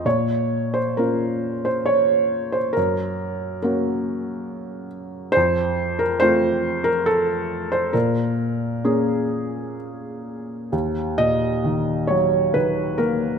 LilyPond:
<<
  \new Staff \with { instrumentName = "Felt piano" } { \time 3/4 \key bes \minor \tempo 4 = 68 des''8. c''16 bes'8. c''16 des''8. c''16 | bes'4 bes'4. r8 | c''8. bes'16 c''8. bes'16 a'8. c''16 | bes'2 r4 |
\key ees \minor r8 ees''4 des''8 ces''8 bes'8 | }
  \new Staff \with { instrumentName = "Felt piano" } { \time 3/4 \key bes \minor bes,4 <bes des' f'>2 | ges,4 <bes des' ges'>2 | f,4 <a c' f'>2 | bes,4 <bes des' aes'>2 |
\key ees \minor ees,8 bes,8 ees8 ges8 ees8 bes8 | }
>>